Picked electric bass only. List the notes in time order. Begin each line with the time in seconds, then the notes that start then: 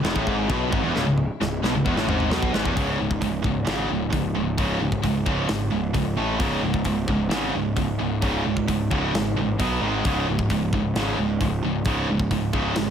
0.04 E1
0.16 A1
0.27 G#1
0.49 B1
0.72 G#1
0.85 E1
0.96 C#1
1.07 C#1
1.41 C#1
1.63 B1
1.75 C#1
1.86 E1
1.96 A1
2.07 G#1
2.31 B1
2.54 G#1
2.65 E1
2.76 C#1
3.00 C#1
3.22 C#1
3.44 C#1
3.67 G#1
3.90 C#1
4.13 C#1
4.36 C#1
4.58 C#1
4.82 C#1
5.03 C#1
5.26 C#1
5.49 G#1
5.72 C#1
5.95 C#1
6.17 A1
6.40 C#1
6.63 C#1
6.85 C#1
7.08 C#1
7.30 G#1
7.54 C#1
7.77 C#1
8.00 C#1
8.22 C#1
8.46 C#1
8.68 C#1
8.91 C#1
9.14 G#1
9.36 A1
9.60 B1
9.82 G#1
10.05 C#1
10.28 C#1
10.50 C#1
10.73 C#1
10.95 G#1
11.18 C#1
11.41 C#1
11.64 C#1
11.85 C#1
12.09 C#1
12.31 C#1
12.53 C#1
12.77 G#1